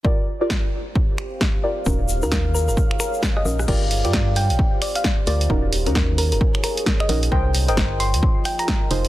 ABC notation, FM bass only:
X:1
M:4/4
L:1/16
Q:"Swing 16ths" 1/4=132
K:Gphr
V:1 name="FM bass" clef=bass
z16 | E,,,3 E,,4 _G,,, z6 B,,,2 | G,,,3 G,,4 B,,, z6 D,,2 | E,,,3 E,,4 _G,,, z6 B,,,2 |
C,,3 G,,,4 E,, z6 F,,,2 |]